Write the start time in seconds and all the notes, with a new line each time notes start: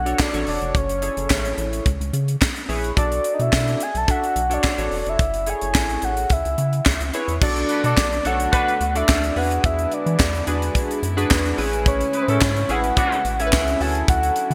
Already playing: B1 F#5
0.06 D4 F#4 A4 C#5, closed hi-hat
0.19 D5, kick, snare, clap
0.33 A1 D4 F#4 A4 C#5, closed hi-hat
0.47 E1 D5, open hi-hat
0.62 F1, closed hi-hat
0.75 F#1 C#5, kick, closed hi-hat
0.89 closed hi-hat
1.02 E4 G#4 A4 C#5, closed hi-hat
1.17 F#1, closed hi-hat
1.30 A1, kick, snare, clap
1.45 closed hi-hat
1.58 A1, closed hi-hat
1.73 closed hi-hat
1.86 C#2, kick, closed hi-hat
2.00 C#2, closed hi-hat
2.13 C#3, closed hi-hat
2.28 closed hi-hat
2.41 kick, snare, clap
2.56 closed hi-hat
2.69 A#1 E4 G#4 B4 C#5, open hi-hat
2.84 closed hi-hat
2.96 B1 D4 F#4 A4 D5, kick, closed hi-hat
3.12 closed hi-hat
3.24 closed hi-hat
3.34 D#5
3.39 B2 E5, closed hi-hat
3.52 B2, kick, snare, clap
3.68 closed hi-hat
3.80 G#5, closed hi-hat
3.95 B1 A5, closed hi-hat
4.08 D4 F#4 A4 E5 F#5, kick, closed hi-hat
4.24 closed hi-hat
4.36 B1, closed hi-hat
4.50 D4 F#4 A4 C#5 D5, closed hi-hat
4.63 kick, snare, clap
4.78 A1 D4 F#4 A4 C#5, closed hi-hat
4.91 E1, open hi-hat
5.06 F1 E5, closed hi-hat
5.19 F#1, kick, closed hi-hat
5.34 closed hi-hat
5.46 E4 G#4 A4 C#5 G#5, closed hi-hat
5.61 F#1, closed hi-hat
5.74 A1, kick, snare, clap
5.89 closed hi-hat
6.02 A1 F#5, closed hi-hat
6.17 closed hi-hat
6.30 C#2 E5, kick, closed hi-hat
6.45 C#2, closed hi-hat
6.58 C#3, closed hi-hat
6.73 closed hi-hat
6.85 C#2, kick, snare, clap
7.00 C#2, closed hi-hat
7.14 E4 G#4 B4 C#5, closed hi-hat
7.28 E2, closed hi-hat
7.41 B1 D3 A3 B3 D4 F#4 A4 D5, kick, crash
7.56 closed hi-hat
7.69 D4 F#4 B4, closed hi-hat
7.84 B2 D4 F#4 A4 D5, closed hi-hat
7.97 B1, kick, snare, clap
8.12 closed hi-hat
8.24 B1 D4 F#4 A4 C#5 F#5, closed hi-hat
8.40 closed hi-hat
8.52 D4 F#4 B4, kick, closed hi-hat
8.68 closed hi-hat
8.80 D2, closed hi-hat
8.95 D4 F#4 A4 D5 E5, closed hi-hat
9.08 D2, kick, snare, clap
9.23 closed hi-hat
9.36 E2 D3 G#3 B3 D4 E4 F#4 G#4 B4 F#5, open hi-hat
9.51 closed hi-hat
9.64 E2 E5, kick, closed hi-hat
9.79 closed hi-hat
9.92 D5, closed hi-hat
10.06 E3, closed hi-hat
10.19 E2, kick, snare, clap
10.35 closed hi-hat
10.47 E2 D4 F#4 G#4 B4, closed hi-hat
10.62 closed hi-hat
10.75 kick, closed hi-hat
10.91 closed hi-hat
11.03 F#2, closed hi-hat
11.17 D4 F#4 G#4 B4, closed hi-hat
11.30 E2, kick, snare, clap
11.45 closed hi-hat
11.57 A1 C#3 G#3 A3 C#4 E4 G#4 B4, open hi-hat
11.73 closed hi-hat
11.86 C#5, kick, closed hi-hat
12.01 closed hi-hat
12.13 E4 G#4 B4, closed hi-hat
12.22 C5
12.28 A2 C#4 E4 A4 C#5, closed hi-hat
12.41 G#2, kick, snare, clap
12.57 closed hi-hat
12.69 A1 C#4 E4 G#4 B4 F#5, closed hi-hat
12.84 closed hi-hat
12.97 B3 D4 F#4, kick, closed hi-hat
13.12 closed hi-hat
13.25 A1, closed hi-hat
13.39 C#4 E4 G#4 A4 E5, closed hi-hat
13.47 B4
13.52 C#2, kick, snare, clap
13.68 closed hi-hat
13.80 D2 D3 F#3 C#4 E4 F#4 A4 G#5, open hi-hat
13.95 closed hi-hat
14.08 D2 F#5, kick, closed hi-hat
14.23 closed hi-hat
14.36 closed hi-hat
14.50 D3, closed hi-hat